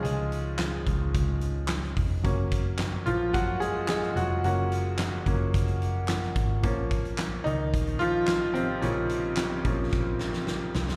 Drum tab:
HH |x-x-x-x-x-x-x-o-|x-x-x-x-x-x-x-x-|x-x-x-x-xxx-x-x-|x-xxx-x-xxx-x-x-|
CP |----x-------x---|----x-------x---|----x-------x---|----x-------x---|
SD |----o-------oo--|----o-------oo--|----o-------oo--|----o-------o---|
BD |------o-o-----o-|o-o-----o-------|------o-o-----o-|o-o-----o-------|

HH |x-x-x-x---------|
CP |----x-----------|
SD |----o---o-ooo-oo|
BD |------o-o-------|